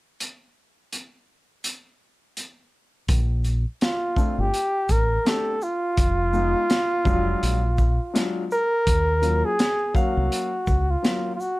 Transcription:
0.20 closed hi-hat medium
0.93 closed hi-hat medium
1.64 closed hi-hat medium
2.37 closed hi-hat soft
3.08 3.64 A#1 loud
3.08 kick loud
3.08 closed hi-hat medium
3.44 closed hi-hat soft
3.44 shaker soft
3.81 4.42 F4 medium
3.81 snare medium
3.81 closed hi-hat medium
4.16 4.44 A3 medium
4.16 4.44 C4 medium
4.16 4.44 D4 medium
4.16 4.45 F4 medium
4.16 kick medium
4.16 shaker medium
4.38 4.50 G1 medium
4.38 4.93 G4 loud
4.54 closed hi-hat medium
4.89 5.17 A1 medium
4.89 5.29 A#4 loud
4.89 kick medium
4.89 closed hi-hat soft
4.89 shaker soft
5.25 5.52 A3 medium
5.25 5.53 C4 medium
5.25 5.53 D4 medium
5.25 5.53 G4 medium
5.25 5.65 A4 medium
5.25 snare medium
5.25 closed hi-hat medium
5.62 8.26 F4 loud
5.62 shaker soft
5.97 6.53 F1 loud
5.97 kick loud
5.97 closed hi-hat medium
6.33 6.61 G#3 medium
6.33 6.61 B3 medium
6.33 6.61 D#4 medium
6.33 6.61 F4 medium
6.33 shaker soft
6.70 snare loud
6.70 closed hi-hat medium
7.05 7.33 F1 medium
7.05 7.59 F#3 medium
7.05 7.59 G#3 medium
7.05 7.59 D4 medium
7.05 7.59 F4 medium
7.05 kick loud
7.05 shaker soft
7.43 7.98 A#1 medium
7.43 closed hi-hat medium
7.78 kick medium
7.78 shaker medium
8.14 8.41 F#3 medium
8.14 8.41 G#3 medium
8.14 8.42 D4 medium
8.14 8.42 F4 medium
8.14 snare medium
8.14 closed hi-hat medium
8.51 9.47 A#4 loud
8.51 shaker medium
8.87 9.42 D#2 medium
8.87 kick medium
8.87 closed hi-hat medium
9.22 9.50 F#3 medium
9.22 9.50 A#3 medium
9.22 9.50 C#4 medium
9.22 9.50 F4 medium
9.22 closed hi-hat soft
9.22 shaker soft
9.46 9.96 G#4 loud
9.59 snare medium
9.59 closed hi-hat medium
9.94 10.48 F#3 medium
9.94 10.48 A#3 medium
9.94 10.48 C#4 medium
9.94 10.92 F#4 medium
9.94 10.49 F5 medium
9.94 kick medium
9.94 shaker soft
10.17 10.28 C2 medium
10.32 closed hi-hat medium
10.67 10.95 C#2 medium
10.67 kick medium
10.67 shaker soft
10.90 11.35 F4 medium
11.03 11.30 F#3 medium
11.03 11.30 A#3 medium
11.03 11.31 C#4 soft
11.03 11.31 F4 medium
11.03 snare medium
11.03 closed hi-hat medium
11.36 11.42 F4 medium
11.40 11.60 F#4 medium
11.40 shaker soft

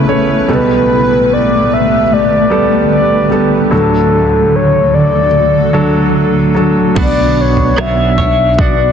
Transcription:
0.00 0.44 A1 soft
0.00 0.44 E2 soft
0.00 0.46 C#3 medium
0.00 0.07 A3 medium
0.00 6.93 A3 medium
0.00 0.08 C#4 medium
0.00 0.45 E4 medium
0.00 0.51 B4 medium
0.00 3.69 B4 medium
0.07 0.46 A3 soft
0.07 0.46 C#4 soft
0.07 0.47 C#5 medium
0.48 3.69 B1 medium
0.48 3.69 B2 soft
0.48 6.93 D3 medium
0.48 2.02 G3 medium
0.48 2.02 B3 medium
0.48 3.70 G4 medium
0.48 2.03 A4 medium
0.48 1.35 B4 loud
1.33 1.75 D5 loud
1.73 2.15 E5 medium
2.13 2.92 D5 loud
2.50 3.27 G3 medium
2.50 3.28 B3 medium
2.50 3.28 A4 medium
2.92 3.49 D5 medium
3.30 3.70 G3 medium
3.30 3.70 B3 soft
3.30 3.70 A4 medium
3.71 6.92 D2 soft
3.71 6.92 A2 soft
3.71 5.26 F#3 medium
3.71 5.26 D4 soft
3.71 6.93 F#4 medium
3.71 6.93 A4 medium
3.71 5.26 A4 medium
3.71 4.57 A4 medium
4.56 4.96 C#5 loud
4.94 6.16 D5 medium
5.73 6.51 F#3 medium
5.73 6.52 D4 medium
5.73 6.52 A4 medium
6.55 6.94 F#3 medium
6.55 6.94 D4 soft
6.55 6.95 A4 medium
6.95 7.74 B1 medium
6.95 8.50 B3 medium
6.95 7.76 B3 medium
6.95 8.50 D4 soft
6.95 7.76 D4 medium
6.95 8.92 D4 medium
6.95 7.77 F#4 medium
6.95 8.51 B4 medium
6.95 8.92 B4 medium
6.95 8.92 F#5 medium
6.95 8.92 C#6 medium
6.95 kick medium
6.95 floor tom medium
6.95 crash medium
7.01 7.42 D5 medium
7.41 7.82 C#5 medium
7.57 floor tom soft
7.76 8.92 B1 medium
7.76 8.18 B3 medium
7.76 8.18 D4 medium
7.76 8.19 F#4 medium
7.76 8.17 C#5 medium
7.76 8.62 E5 loud
7.76 cross-stick loud
8.18 8.58 D4 soft
8.18 8.59 F#4 soft
8.18 8.59 C#5 medium
8.18 floor tom medium
8.58 8.92 B3 medium
8.58 8.92 D4 medium
8.58 8.92 F#4 medium
8.58 8.92 D5 medium
8.58 kick medium

